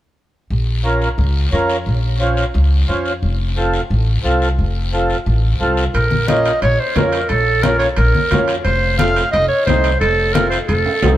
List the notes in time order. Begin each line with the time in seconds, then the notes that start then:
0.50 A#1, long guiro
0.84 C#4 F4 A#4, short guiro
1.02 short guiro
1.18 C#2, long guiro
1.52 F2 C#4 F4 A#4, short guiro
1.69 short guiro
1.86 A#1, long guiro
2.20 C#4 F4 C5, short guiro
2.37 short guiro
2.54 C#2, long guiro
2.88 F2 C#4 F4 C5, short guiro
3.05 short guiro
3.22 F1, long guiro
3.57 C4 F4 A4, short guiro
3.74 short guiro
3.90 A1, long guiro
4.24 C2 C4 F4 A4, short guiro
4.42 short guiro
4.59 F1, long guiro
4.93 C4 F4 A4, short guiro
5.10 short guiro
5.26 A1, long guiro
5.60 C2 C4 F4 A4, short guiro
5.77 short guiro
5.94 A#1 A#4, high conga, high timbale, long guiro
6.11 high conga
6.28 A#3 C#4 F4 D#5, high conga, high timbale, short guiro
6.45 high timbale, short guiro
6.62 A#1 C#5, high conga, high timbale, long guiro
6.80 C5
6.96 F2 A#3 C#4 F4 A#4, high conga, high timbale, low timbale, short guiro
7.12 high timbale, short guiro
7.29 A#1 A4, high conga, high timbale, long guiro
7.63 A#3 C#4 F4 A#4, high conga, high timbale, short guiro
7.79 C#5, high timbale, short guiro
7.97 A#1 A#4, high conga, high timbale, long guiro
8.15 high conga
8.31 F2 A#3 C#4 F4, high conga, high timbale, low timbale, short guiro
8.48 high timbale, short guiro
8.64 F1 C5, high conga, high timbale, long guiro
8.98 A3 C4 F4 F5, high conga, high timbale, short guiro
9.16 high timbale, short guiro
9.32 F1 D#5, high conga, high timbale, long guiro
9.48 C#5
9.66 C2 A3 C4 D#4 C5, high conga, high timbale, short guiro
9.84 high timbale, short guiro
10.00 F1 A4, high conga, high timbale, long guiro
10.33 A3 C4 F4 A#4, high conga, high timbale, short guiro
10.50 C5, high timbale, short guiro
10.67 F1 A4, high conga, high timbale, long guiro
10.86 high timbale
11.02 C2 A3 C4 D#4, high conga, low timbale, short guiro